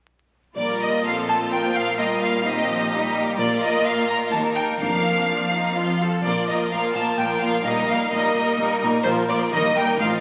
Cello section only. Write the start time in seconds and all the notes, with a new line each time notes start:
0.57 A#2
3.39 A#2
4.32 D#2
4.80 F2
6.25 A#2
6.48 A#2
6.72 A#2
6.95 A#2
7.18 A#2
7.42 A#2
7.65 A#2
7.88 A#2
8.12 A#2
8.35 A#2
8.59 A#2
8.82 A#2
9.06 A#2
9.29 A#2
9.53 D#3
9.76 D#3
10.00 A2